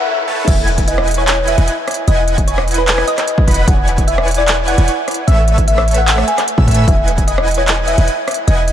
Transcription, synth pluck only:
0, 0, Header, 1, 2, 480
1, 0, Start_track
1, 0, Key_signature, 4, "major"
1, 0, Tempo, 400000
1, 571, Time_signature, 4, 2, 24, 8
1, 10469, End_track
2, 0, Start_track
2, 0, Title_t, "Synth pluck"
2, 0, Program_c, 0, 84
2, 573, Note_on_c, 0, 76, 100
2, 872, Note_off_c, 0, 76, 0
2, 1052, Note_on_c, 0, 75, 90
2, 1276, Note_off_c, 0, 75, 0
2, 1415, Note_on_c, 0, 73, 99
2, 1638, Note_off_c, 0, 73, 0
2, 1773, Note_on_c, 0, 76, 95
2, 2399, Note_off_c, 0, 76, 0
2, 2491, Note_on_c, 0, 75, 99
2, 2791, Note_off_c, 0, 75, 0
2, 2970, Note_on_c, 0, 73, 91
2, 3195, Note_off_c, 0, 73, 0
2, 3335, Note_on_c, 0, 71, 96
2, 3558, Note_off_c, 0, 71, 0
2, 3691, Note_on_c, 0, 75, 99
2, 4318, Note_off_c, 0, 75, 0
2, 4409, Note_on_c, 0, 78, 99
2, 4710, Note_off_c, 0, 78, 0
2, 4889, Note_on_c, 0, 76, 100
2, 5114, Note_off_c, 0, 76, 0
2, 5254, Note_on_c, 0, 74, 97
2, 5477, Note_off_c, 0, 74, 0
2, 5610, Note_on_c, 0, 78, 94
2, 6237, Note_off_c, 0, 78, 0
2, 6329, Note_on_c, 0, 76, 99
2, 6630, Note_off_c, 0, 76, 0
2, 6812, Note_on_c, 0, 76, 97
2, 7036, Note_off_c, 0, 76, 0
2, 7173, Note_on_c, 0, 78, 94
2, 7397, Note_off_c, 0, 78, 0
2, 7531, Note_on_c, 0, 80, 92
2, 8158, Note_off_c, 0, 80, 0
2, 8250, Note_on_c, 0, 76, 98
2, 8550, Note_off_c, 0, 76, 0
2, 8729, Note_on_c, 0, 75, 94
2, 8954, Note_off_c, 0, 75, 0
2, 9093, Note_on_c, 0, 73, 93
2, 9317, Note_off_c, 0, 73, 0
2, 9450, Note_on_c, 0, 76, 97
2, 10077, Note_off_c, 0, 76, 0
2, 10170, Note_on_c, 0, 75, 102
2, 10469, Note_off_c, 0, 75, 0
2, 10469, End_track
0, 0, End_of_file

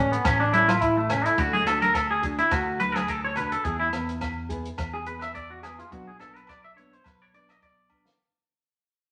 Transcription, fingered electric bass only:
0, 0, Header, 1, 2, 480
1, 0, Start_track
1, 0, Tempo, 567108
1, 1165, Time_signature, 4, 2, 24, 8
1, 7717, End_track
2, 0, Start_track
2, 0, Title_t, "Fingered electric bass"
2, 0, Program_c, 0, 33
2, 0, Note_on_c, 0, 33, 74
2, 129, Note_off_c, 0, 33, 0
2, 210, Note_on_c, 0, 33, 88
2, 1064, Note_off_c, 0, 33, 0
2, 1170, Note_on_c, 0, 38, 96
2, 1382, Note_off_c, 0, 38, 0
2, 1408, Note_on_c, 0, 38, 75
2, 2049, Note_off_c, 0, 38, 0
2, 2129, Note_on_c, 0, 38, 95
2, 2984, Note_off_c, 0, 38, 0
2, 3088, Note_on_c, 0, 40, 100
2, 3300, Note_off_c, 0, 40, 0
2, 3325, Note_on_c, 0, 40, 79
2, 3967, Note_off_c, 0, 40, 0
2, 4050, Note_on_c, 0, 40, 83
2, 4906, Note_off_c, 0, 40, 0
2, 5012, Note_on_c, 0, 35, 87
2, 5223, Note_off_c, 0, 35, 0
2, 5257, Note_on_c, 0, 35, 65
2, 5896, Note_off_c, 0, 35, 0
2, 5972, Note_on_c, 0, 35, 83
2, 6828, Note_off_c, 0, 35, 0
2, 7717, End_track
0, 0, End_of_file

